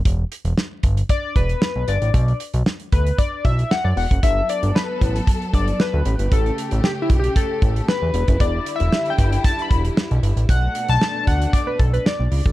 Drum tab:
HH |x-xx--xxx-xx--xx|xxxx-xxxx-xx--ox|x-xx--xxxxxx--xx|xxxx--xxx-xx--xx|
SD |----o-------o---|----o-------o---|----o-------o---|----o-------o---|
BD |o-----o-o-o-----|o-----o-o-o----o|o-----o-o-o-----|o-----o-o-o----o|

HH |x-xx-xxxxxxx-xxx|x-xx--xxx-xx--ox|
SD |----o-------o---|----o-------o---|
BD |o-----o-o-o-----|o-----o-o-o----o|